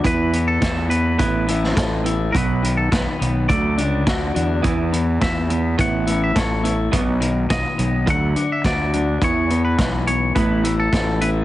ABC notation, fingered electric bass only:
X:1
M:4/4
L:1/16
Q:1/4=105
K:Alyd
V:1 name="Fingered electric bass" clef=bass
z4 E,,4 A,,,4 A,,,4 | B,,,4 B,,, z B,,,2 =D,,2 C,,2 D,,2 E,,2 | E,,4 E,,4 A,,,4 A,,,4 | B,,,4 z2 B,,,2 =D,,2 z2 D,,4 |
E,,4 B,,,4 A,,,4 A,,,4 |]